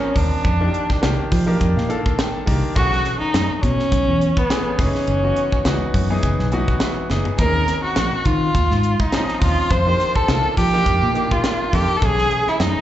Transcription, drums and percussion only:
0.16 kick medium
0.16 open hi-hat medium
0.45 kick medium
0.45 closed hi-hat medium
0.74 closed hi-hat soft
0.90 kick medium
0.90 snare soft
1.03 snare medium
1.03 closed hi-hat medium
1.32 kick medium
1.32 open hi-hat medium
1.61 kick medium
1.61 closed hi-hat medium
1.78 snare soft
1.90 closed hi-hat medium
2.06 kick medium
2.19 snare loud
2.19 closed hi-hat medium
2.47 kick medium
2.47 open hi-hat medium
2.76 kick loud
2.76 closed hi-hat medium
2.93 snare soft
3.05 snare soft
3.05 closed hi-hat medium
3.34 snare loud
3.34 closed hi-hat medium
3.63 kick medium
3.63 closed hi-hat medium
3.79 snare soft
3.92 kick medium
3.92 closed hi-hat medium
4.21 closed hi-hat medium
4.37 kick medium
4.50 snare loud
4.50 closed hi-hat medium
4.79 kick loud
4.79 open hi-hat medium
4.95 snare soft
5.07 closed hi-hat medium
5.36 closed hi-hat soft
5.52 kick medium
5.65 snare loud
5.65 closed hi-hat medium
5.94 kick medium
5.94 open hi-hat medium
6.23 kick medium
6.23 closed hi-hat medium
6.39 snare soft
6.52 closed hi-hat medium
6.68 kick medium
6.80 snare loud
6.80 closed hi-hat medium
7.10 snare medium
7.25 floor tom medium
7.38 kick loud
7.38 closed hi-hat medium
7.68 snare soft
7.68 closed hi-hat medium
7.96 snare loud
7.96 closed hi-hat medium
8.25 kick medium
8.25 closed hi-hat medium
8.55 kick medium
8.55 closed hi-hat medium
8.71 snare soft
8.83 closed hi-hat medium
9.00 kick medium
9.12 snare medium
9.12 closed hi-hat medium
9.29 snare soft
9.42 kick medium
9.42 open hi-hat medium
9.71 kick medium
9.71 closed hi-hat medium
10.00 snare soft
10.00 closed hi-hat soft
10.16 kick medium
10.28 snare loud
10.28 closed hi-hat medium
10.57 kick medium
10.57 open hi-hat medium
10.74 snare soft
10.86 kick medium
10.86 closed hi-hat medium
11.15 closed hi-hat medium
11.31 kick medium
11.44 snare loud
11.44 closed hi-hat medium
11.73 kick medium
11.73 open hi-hat medium
12.02 kick loud
12.02 closed hi-hat medium
12.18 snare soft
12.31 closed hi-hat medium
12.47 snare soft
12.60 snare loud
12.60 closed hi-hat medium

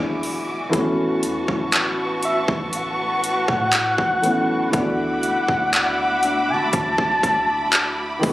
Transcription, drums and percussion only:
0.23 open hi-hat medium
0.73 kick loud
0.73 closed hi-hat medium
1.23 closed hi-hat medium
1.48 kick medium
1.73 clap loud
1.73 closed hi-hat medium
2.23 closed hi-hat medium
2.48 kick loud
2.73 closed hi-hat medium
3.24 closed hi-hat medium
3.48 kick loud
3.72 clap loud
3.72 closed hi-hat medium
3.98 kick medium
4.24 closed hi-hat medium
4.73 kick loud
4.73 closed hi-hat medium
5.23 closed hi-hat medium
5.48 kick medium
5.73 clap loud
5.73 closed hi-hat medium
6.23 closed hi-hat medium
6.73 kick medium
6.73 closed hi-hat medium
6.98 kick loud
7.23 kick loud
7.23 closed hi-hat medium
7.73 clap loud
7.73 closed hi-hat medium
8.23 kick loud
8.23 open hi-hat medium

